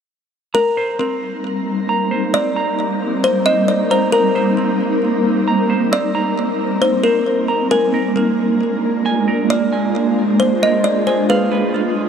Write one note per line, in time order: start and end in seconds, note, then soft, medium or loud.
0.54 7.67 G3 medium
0.54 11.25 A#3 medium
0.54 7.67 A#3 medium
0.54 7.67 C4 medium
0.54 7.67 D#4 medium
0.54 7.67 A#4 medium
0.54 0.97 A#4 loud
0.54 7.67 C5 medium
0.54 1.88 A#5 loud
0.77 2.10 C5 medium
0.99 2.32 C4 medium
1.89 2.55 A#5 medium
2.11 3.45 C5 medium
2.34 3.68 C4 medium
2.34 3.19 D5 medium
2.56 3.90 A#5 medium
3.24 3.45 C5 medium
3.46 4.34 C5 medium
3.46 3.67 D#5 medium
3.68 3.89 D5 medium
3.91 4.12 C5 medium
3.91 4.12 A#5 medium
4.12 4.55 A#4 medium
4.12 5.46 A#5 loud
4.35 5.68 C5 medium
4.58 5.90 C4 medium
5.48 6.14 A#5 medium
5.70 7.03 C5 medium
5.92 7.26 C4 medium
5.92 6.78 D5 loud
6.15 7.47 A#5 medium
6.82 7.03 C5 medium
7.04 7.25 A#4 medium
7.04 7.71 C5 medium
7.48 7.71 A#5 medium
7.71 11.26 G#3 medium
7.71 11.26 D4 medium
7.71 12.09 D4 medium
7.71 12.09 F4 medium
7.71 9.48 A#4 medium
7.71 8.13 A#4 loud
7.71 9.48 A#4 medium
7.71 9.05 G#5 medium
7.94 9.27 A#4 medium
8.16 9.49 A#3 medium
9.06 9.71 G#5 medium
9.28 10.61 A#4 medium
9.50 10.84 A#3 loud
9.50 11.28 G#4 medium
9.50 11.28 C5 medium
9.50 10.36 D5 loud
9.73 11.06 G#5 medium
10.40 10.61 C5 medium
10.62 11.29 A#4 medium
10.62 10.84 D#5 medium
10.84 11.06 D5 medium
11.07 11.28 C5 medium
11.07 11.29 G#5 medium
11.29 12.09 G3 medium
11.29 12.09 B3 medium
11.29 12.09 F4 medium
11.29 12.09 B4 medium
11.29 11.72 B4 medium
11.29 12.09 F5 loud
11.51 12.09 B4 medium
11.74 12.09 F4 medium